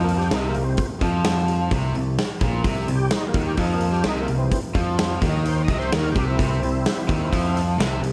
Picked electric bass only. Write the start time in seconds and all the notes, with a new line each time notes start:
Already playing: F2
0.31 C2
0.56 C2
1.01 F2
1.71 C2
1.95 C2
2.41 A#1
2.64 C2
2.88 C2
3.34 D#2
3.58 F2
4.05 C2
4.29 C2
4.75 F2
5.22 D#2
5.68 C2
5.93 D#2
6.16 C2
6.39 C2
6.62 C2
7.09 D#2
7.33 F2
7.80 C2
8.02 C2